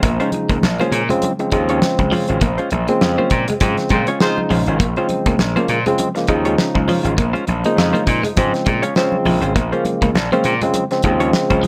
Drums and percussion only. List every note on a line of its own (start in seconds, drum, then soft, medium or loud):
0.03 kick loud
0.03 closed hi-hat medium
0.03 low conga medium
0.20 closed hi-hat soft
0.32 closed hi-hat medium
0.32 high conga medium
0.49 kick medium
0.49 closed hi-hat soft
0.63 snare loud
0.63 muted conga soft
0.63 high conga medium
0.79 closed hi-hat soft
0.79 high conga medium
0.92 closed hi-hat medium
0.92 muted conga soft
1.10 closed hi-hat medium
1.10 low conga medium
1.22 closed hi-hat loud
1.22 muted conga soft
1.22 high conga medium
1.39 closed hi-hat soft
1.51 kick medium
1.51 closed hi-hat medium
1.69 closed hi-hat medium
1.82 snare loud
1.99 kick medium
1.99 closed hi-hat soft
1.99 high conga medium
2.12 open hi-hat medium
2.12 muted conga soft
2.12 low conga medium
2.28 closed hi-hat soft
2.41 kick loud
2.41 closed hi-hat medium
2.41 muted conga soft
2.41 low conga medium
2.58 closed hi-hat soft
2.71 closed hi-hat medium
2.71 high conga medium
2.88 closed hi-hat medium
3.01 snare loud
3.01 muted conga soft
3.01 high conga medium
3.19 high conga medium
3.30 kick loud
3.30 closed hi-hat medium
3.30 muted conga soft
3.48 closed hi-hat medium
3.48 low conga medium
3.60 kick loud
3.60 closed hi-hat loud
3.60 high conga medium
3.77 snare soft
3.77 closed hi-hat soft
3.89 kick medium
3.89 closed hi-hat medium
3.89 muted conga soft
3.89 high conga medium
4.07 closed hi-hat medium
4.20 snare loud
4.38 high conga medium
4.50 open hi-hat medium
4.50 muted conga soft
4.50 low conga medium
4.66 closed hi-hat medium
4.80 kick loud
4.80 closed hi-hat loud
4.80 muted conga soft
4.80 low conga medium
4.96 closed hi-hat soft
5.09 closed hi-hat medium
5.09 high conga medium
5.26 kick loud
5.26 closed hi-hat medium
5.39 snare loud
5.39 high conga medium
5.56 closed hi-hat soft
5.56 high conga medium
5.68 closed hi-hat medium
5.68 muted conga soft
5.86 closed hi-hat medium
5.86 low conga medium
5.98 closed hi-hat loud
5.98 high conga medium
6.16 snare soft
6.16 closed hi-hat soft
6.27 kick medium
6.27 closed hi-hat medium
6.27 muted conga soft
6.45 closed hi-hat medium
6.58 snare loud
6.58 muted conga soft
6.75 kick medium
6.75 high conga medium
6.88 open hi-hat medium
6.88 low conga medium
7.05 closed hi-hat soft
7.18 kick loud
7.18 closed hi-hat medium
7.18 low conga medium
7.35 closed hi-hat soft
7.47 closed hi-hat medium
7.47 high conga medium
7.64 closed hi-hat medium
7.77 snare loud
7.77 high conga medium
7.94 closed hi-hat soft
7.94 high conga medium
8.07 kick medium
8.07 closed hi-hat medium
8.07 muted conga soft
8.23 closed hi-hat medium
8.23 low conga medium
8.36 kick loud
8.36 closed hi-hat loud
8.36 muted conga soft
8.36 high conga medium
8.54 snare soft
8.54 closed hi-hat soft
8.66 kick medium
8.66 closed hi-hat medium
8.66 muted conga soft
8.83 closed hi-hat medium
8.95 snare loud
8.95 muted conga soft
9.12 high conga medium
9.25 open hi-hat medium
9.25 muted conga soft
9.25 low conga medium
9.42 closed hi-hat medium
9.56 kick loud
9.56 closed hi-hat medium
9.56 muted conga soft
9.56 low conga medium
9.73 closed hi-hat soft
9.85 closed hi-hat medium
9.85 high conga medium
10.02 kick loud
10.02 closed hi-hat soft
10.15 snare loud
10.15 high conga medium
10.32 closed hi-hat soft
10.32 high conga medium
10.44 closed hi-hat medium
10.44 muted conga soft
10.61 closed hi-hat medium
10.61 low conga medium
10.74 closed hi-hat loud
10.74 muted conga soft
10.74 high conga medium
10.91 snare soft
10.91 closed hi-hat soft
11.02 kick medium
11.02 closed hi-hat medium
11.20 closed hi-hat medium
11.33 snare loud
11.33 muted conga soft
11.50 kick medium
11.50 closed hi-hat soft
11.50 high conga medium
11.63 open hi-hat medium
11.63 low conga medium